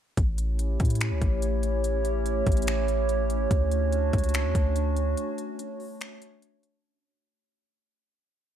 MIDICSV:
0, 0, Header, 1, 4, 480
1, 0, Start_track
1, 0, Key_signature, 2, "major"
1, 0, Tempo, 416667
1, 199, Time_signature, 4, 2, 24, 8
1, 9853, End_track
2, 0, Start_track
2, 0, Title_t, "Ambient pad"
2, 0, Program_c, 0, 92
2, 205, Note_on_c, 0, 73, 89
2, 206, Note_on_c, 0, 61, 72
2, 206, Note_on_c, 0, 64, 72
2, 207, Note_on_c, 0, 57, 79
2, 207, Note_on_c, 0, 67, 71
2, 4004, Note_off_c, 0, 64, 0
2, 4005, Note_off_c, 0, 67, 0
2, 4038, Note_on_c, 0, 66, 75
2, 4039, Note_on_c, 0, 62, 70
2, 7836, Note_off_c, 0, 73, 0
2, 7837, Note_off_c, 0, 57, 0
2, 7837, Note_off_c, 0, 61, 0
2, 7840, Note_off_c, 0, 66, 0
2, 7841, Note_off_c, 0, 62, 0
2, 9853, End_track
3, 0, Start_track
3, 0, Title_t, "808-style bass"
3, 0, Program_c, 1, 38
3, 201, Note_on_c, 1, 33, 112
3, 891, Note_off_c, 1, 33, 0
3, 922, Note_on_c, 1, 45, 111
3, 1281, Note_on_c, 1, 37, 102
3, 1298, Note_off_c, 1, 45, 0
3, 1394, Note_off_c, 1, 37, 0
3, 1400, Note_on_c, 1, 33, 102
3, 2794, Note_off_c, 1, 33, 0
3, 2841, Note_on_c, 1, 33, 108
3, 3994, Note_off_c, 1, 33, 0
3, 4041, Note_on_c, 1, 38, 116
3, 4732, Note_off_c, 1, 38, 0
3, 4762, Note_on_c, 1, 37, 110
3, 5120, Note_on_c, 1, 40, 100
3, 5137, Note_off_c, 1, 37, 0
3, 5234, Note_off_c, 1, 40, 0
3, 5240, Note_on_c, 1, 38, 98
3, 5931, Note_off_c, 1, 38, 0
3, 9853, End_track
4, 0, Start_track
4, 0, Title_t, "Drums"
4, 200, Note_on_c, 9, 36, 109
4, 200, Note_on_c, 9, 42, 85
4, 315, Note_off_c, 9, 42, 0
4, 316, Note_off_c, 9, 36, 0
4, 439, Note_on_c, 9, 42, 73
4, 554, Note_off_c, 9, 42, 0
4, 681, Note_on_c, 9, 42, 77
4, 796, Note_off_c, 9, 42, 0
4, 919, Note_on_c, 9, 42, 56
4, 921, Note_on_c, 9, 36, 99
4, 979, Note_off_c, 9, 42, 0
4, 979, Note_on_c, 9, 42, 56
4, 1036, Note_off_c, 9, 36, 0
4, 1038, Note_off_c, 9, 42, 0
4, 1038, Note_on_c, 9, 42, 57
4, 1098, Note_off_c, 9, 42, 0
4, 1098, Note_on_c, 9, 42, 59
4, 1159, Note_off_c, 9, 42, 0
4, 1159, Note_on_c, 9, 42, 86
4, 1167, Note_on_c, 9, 26, 109
4, 1274, Note_off_c, 9, 42, 0
4, 1282, Note_off_c, 9, 26, 0
4, 1400, Note_on_c, 9, 36, 97
4, 1400, Note_on_c, 9, 42, 67
4, 1515, Note_off_c, 9, 36, 0
4, 1515, Note_off_c, 9, 42, 0
4, 1639, Note_on_c, 9, 42, 75
4, 1754, Note_off_c, 9, 42, 0
4, 1879, Note_on_c, 9, 42, 83
4, 1994, Note_off_c, 9, 42, 0
4, 2121, Note_on_c, 9, 42, 79
4, 2236, Note_off_c, 9, 42, 0
4, 2358, Note_on_c, 9, 42, 72
4, 2474, Note_off_c, 9, 42, 0
4, 2600, Note_on_c, 9, 42, 82
4, 2715, Note_off_c, 9, 42, 0
4, 2839, Note_on_c, 9, 42, 58
4, 2841, Note_on_c, 9, 36, 100
4, 2900, Note_off_c, 9, 42, 0
4, 2900, Note_on_c, 9, 42, 57
4, 2956, Note_off_c, 9, 36, 0
4, 2960, Note_off_c, 9, 42, 0
4, 2960, Note_on_c, 9, 42, 56
4, 3020, Note_off_c, 9, 42, 0
4, 3020, Note_on_c, 9, 42, 59
4, 3080, Note_off_c, 9, 42, 0
4, 3080, Note_on_c, 9, 42, 83
4, 3087, Note_on_c, 9, 26, 108
4, 3195, Note_off_c, 9, 42, 0
4, 3202, Note_off_c, 9, 26, 0
4, 3321, Note_on_c, 9, 42, 70
4, 3436, Note_off_c, 9, 42, 0
4, 3560, Note_on_c, 9, 42, 74
4, 3675, Note_off_c, 9, 42, 0
4, 3800, Note_on_c, 9, 42, 80
4, 3915, Note_off_c, 9, 42, 0
4, 4041, Note_on_c, 9, 36, 109
4, 4041, Note_on_c, 9, 42, 79
4, 4156, Note_off_c, 9, 36, 0
4, 4156, Note_off_c, 9, 42, 0
4, 4280, Note_on_c, 9, 42, 74
4, 4395, Note_off_c, 9, 42, 0
4, 4521, Note_on_c, 9, 42, 78
4, 4637, Note_off_c, 9, 42, 0
4, 4761, Note_on_c, 9, 42, 54
4, 4762, Note_on_c, 9, 36, 98
4, 4820, Note_off_c, 9, 42, 0
4, 4820, Note_on_c, 9, 42, 57
4, 4877, Note_off_c, 9, 36, 0
4, 4880, Note_off_c, 9, 42, 0
4, 4880, Note_on_c, 9, 42, 58
4, 4940, Note_off_c, 9, 42, 0
4, 4940, Note_on_c, 9, 42, 58
4, 5000, Note_off_c, 9, 42, 0
4, 5000, Note_on_c, 9, 42, 86
4, 5008, Note_on_c, 9, 26, 110
4, 5115, Note_off_c, 9, 42, 0
4, 5123, Note_off_c, 9, 26, 0
4, 5241, Note_on_c, 9, 36, 95
4, 5241, Note_on_c, 9, 42, 72
4, 5356, Note_off_c, 9, 36, 0
4, 5356, Note_off_c, 9, 42, 0
4, 5480, Note_on_c, 9, 42, 75
4, 5595, Note_off_c, 9, 42, 0
4, 5720, Note_on_c, 9, 42, 83
4, 5835, Note_off_c, 9, 42, 0
4, 5960, Note_on_c, 9, 42, 83
4, 6076, Note_off_c, 9, 42, 0
4, 6199, Note_on_c, 9, 42, 73
4, 6315, Note_off_c, 9, 42, 0
4, 6441, Note_on_c, 9, 42, 77
4, 6556, Note_off_c, 9, 42, 0
4, 6681, Note_on_c, 9, 46, 51
4, 6796, Note_off_c, 9, 46, 0
4, 6921, Note_on_c, 9, 42, 85
4, 6928, Note_on_c, 9, 26, 109
4, 7036, Note_off_c, 9, 42, 0
4, 7044, Note_off_c, 9, 26, 0
4, 7162, Note_on_c, 9, 42, 67
4, 7277, Note_off_c, 9, 42, 0
4, 7400, Note_on_c, 9, 42, 76
4, 7515, Note_off_c, 9, 42, 0
4, 7640, Note_on_c, 9, 42, 85
4, 7755, Note_off_c, 9, 42, 0
4, 9853, End_track
0, 0, End_of_file